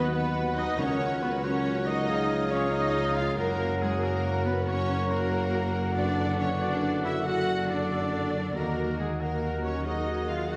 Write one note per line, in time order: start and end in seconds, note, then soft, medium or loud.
0.00 0.62 D#2 medium
0.00 0.75 D#2 medium
0.00 0.81 D#3 medium
0.00 0.57 F#3 soft
0.00 0.13 B3 medium
0.00 0.81 D#4 soft
0.00 0.13 F#4 medium
0.00 0.16 F#4 medium
0.00 2.05 F#4 medium
0.00 0.12 B4 medium
0.00 0.13 B4 medium
0.00 0.14 B4 medium
0.00 0.35 B4 soft
0.00 0.75 B4 medium
0.00 0.13 D#5 medium
0.00 0.10 F#5 medium
0.13 0.57 B3 medium
0.13 1.42 F#4 medium
0.13 0.56 B4 medium
0.13 0.79 B4 medium
0.13 0.78 B4 medium
0.13 0.60 B4 medium
0.13 0.78 D#5 medium
0.13 0.78 F#5 medium
0.36 0.81 B4 soft
0.57 1.21 F#3 soft
0.57 0.79 D#4 medium
0.57 0.79 D#5 medium
0.57 0.80 D#5 medium
0.78 3.34 C#2 medium
0.78 1.39 C#3 medium
0.78 2.07 C#3 medium
0.78 1.22 C#4 medium
0.78 2.08 A#4 medium
0.78 1.43 A#4 medium
0.78 1.42 A#4 medium
0.78 1.22 C#5 medium
0.78 1.42 C#5 medium
0.78 1.24 C#5 medium
0.78 1.42 F#5 medium
1.21 1.85 F#3 soft
1.21 1.30 B3 medium
1.21 1.43 B4 medium
1.21 1.44 B4 medium
1.21 1.46 B4 medium
1.43 1.86 C#4 medium
1.43 2.10 F#4 medium
1.43 2.07 F#4 medium
1.43 2.07 A#4 medium
1.43 2.07 C#5 medium
1.43 1.87 C#5 medium
1.43 1.88 C#5 medium
1.43 2.10 F#5 medium
1.86 2.10 F#3 medium
1.86 2.50 D#4 medium
1.86 2.51 D#5 medium
1.86 2.36 D#5 medium
1.86 2.52 D#5 medium
2.08 3.39 C#3 medium
2.08 3.38 F4 medium
2.08 3.37 G#4 medium
2.08 3.35 G#4 medium
2.08 3.38 G#4 medium
2.08 3.35 C#5 medium
2.08 3.38 F5 medium
2.30 3.40 F3 soft
2.51 2.72 C#4 medium
2.51 2.73 C#5 medium
2.72 3.15 D#4 medium
2.72 3.39 G#4 medium
2.72 3.16 D#5 medium
3.15 4.01 C#4 soft
3.15 3.38 F4 medium
3.15 3.37 F5 medium
3.15 3.38 F5 medium
3.15 3.27 F5 medium
3.37 8.40 F#1 medium
3.37 4.66 F#2 medium
3.37 8.53 F#2 medium
3.37 3.80 A#3 medium
3.37 8.55 F#4 medium
3.37 8.53 F#4 medium
3.37 3.80 A#4 medium
3.37 5.92 A#4 medium
3.37 3.80 A#4 medium
3.37 4.01 A#4 medium
3.37 3.84 A#4 medium
3.37 5.79 C#5 medium
3.37 8.39 F#5 medium
3.58 4.87 C#3 soft
3.80 4.44 F#3 soft
3.80 4.02 G#3 medium
3.80 4.02 G#4 medium
3.80 3.89 G#4 medium
3.80 4.05 G#4 medium
4.02 4.45 A#3 medium
4.02 5.30 C#4 medium
4.02 5.65 F#4 medium
4.02 4.45 A#4 medium
4.02 4.46 A#4 medium
4.02 4.45 A#4 medium
4.24 5.52 F#4 soft
4.45 5.09 F#3 soft
4.45 4.67 B3 medium
4.45 4.67 B4 medium
4.45 4.68 B4 medium
4.67 5.96 F#2 medium
4.67 5.11 C#4 medium
4.67 5.09 C#5 medium
4.67 5.13 C#5 medium
4.67 5.10 C#5 medium
4.88 5.98 C#3 soft
5.10 5.75 F#3 soft
5.10 5.95 A#3 medium
5.10 5.95 A#4 medium
5.10 5.69 A#4 medium
5.10 5.95 A#4 medium
5.32 5.98 C#4 soft
5.54 6.82 F#4 soft
5.76 6.39 F#3 soft
5.95 7.26 F#2 medium
5.95 6.40 D4 medium
5.95 8.57 A4 medium
5.95 7.28 B4 medium
5.95 6.38 D5 medium
5.95 8.52 D5 medium
5.95 6.39 D5 medium
5.95 6.42 D5 medium
6.19 7.47 D3 soft
6.40 7.04 F#3 soft
6.40 6.61 C#4 medium
6.40 6.48 C#5 medium
6.40 6.63 C#5 medium
6.40 6.61 C#5 medium
6.61 7.90 A3 soft
6.61 7.04 D4 medium
6.61 7.04 D5 medium
6.61 7.05 D5 medium
7.04 7.12 E4 medium
7.04 7.26 E5 medium
7.04 7.25 E5 medium
7.04 7.26 E5 medium
7.26 8.58 F#2 medium
7.26 7.69 F#4 medium
7.26 7.92 A4 medium
7.26 7.68 F#5 medium
7.26 7.69 F#5 medium
7.69 8.57 D4 medium
7.69 8.54 D5 medium
7.69 8.55 D5 medium
7.91 8.58 A3 soft
7.91 8.58 A4 medium
8.13 9.20 F#4 soft
8.35 8.77 F#3 soft
8.55 10.56 D#2 medium
8.55 9.85 D#3 soft
8.55 9.00 A#3 medium
8.55 9.20 F#4 medium
8.55 9.17 F#4 soft
8.55 9.17 F#4 medium
8.55 8.98 A#4 medium
8.55 8.99 A#4 medium
8.55 9.17 A#4 medium
8.55 9.17 D#5 medium
8.55 9.17 F#5 medium
8.78 9.64 F#3 soft
8.99 9.21 G#3 medium
8.99 9.42 A#3 soft
8.99 9.21 G#4 medium
8.99 9.22 G#4 soft
8.99 9.08 G#4 medium
9.20 9.64 A#3 medium
9.20 9.84 F#4 medium
9.20 10.50 F#4 soft
9.20 9.85 F#4 medium
9.20 9.84 A#4 medium
9.20 9.64 A#4 medium
9.20 9.85 A#4 medium
9.20 9.64 A#4 medium
9.20 9.85 D#5 medium
9.20 9.85 F#5 soft
9.43 10.07 A#3 soft
9.64 10.29 F#3 soft
9.64 9.86 C#4 medium
9.64 9.86 C#5 medium
9.85 10.56 D#3 soft
9.85 10.30 D#4 medium
9.85 10.49 F#4 soft
9.85 10.50 F#4 medium
9.85 10.56 G#4 medium
9.85 10.50 A#4 soft
9.85 10.29 D#5 medium
9.85 10.50 D#5 soft
9.85 10.29 D#5 medium
9.85 10.50 F#5 medium
10.08 10.56 A#3 soft
10.30 10.56 F#3 soft
10.30 10.51 F4 medium
10.30 10.40 F5 medium
10.30 10.52 F5 medium
10.50 10.56 F#4 medium
10.50 10.56 F#4 soft
10.50 10.56 A#4 soft
10.50 10.56 D#5 soft
10.50 10.56 F#5 soft
10.50 10.56 F#5 medium